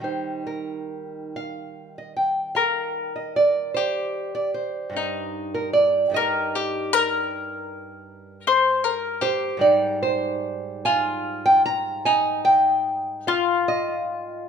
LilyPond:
<<
  \new Staff \with { instrumentName = "Nylon-string guitar" } { \time 12/8 \key ees \major \tempo 4. = 50 << { c''8 bes'4 f''8. ees''16 g''8 f''8. ees''16 d''8 c''8. d''16 c''8~ | c''8. bes'16 d''8 ees''1 c''8 | \key aes \lydian d''8 c''4 aes''8. g''16 bes''8 aes''8 g''4 f''8 ees''4 | } \\ { <ees g ees'>1. | <g, g ees'>4. <g, g ees'>1~ <g, g ees'>8 | <aes, g ees'>1. | } >> }
  \new Staff \with { instrumentName = "Mandolin" } { \time 12/8 \key ees \major r2. bes'4. g'4. | ees'4. bes'8 g'8 bes'2 c''8 bes'8 g'8~ | \key aes \lydian g'4. f'4. ees'4. f'4. | }
>>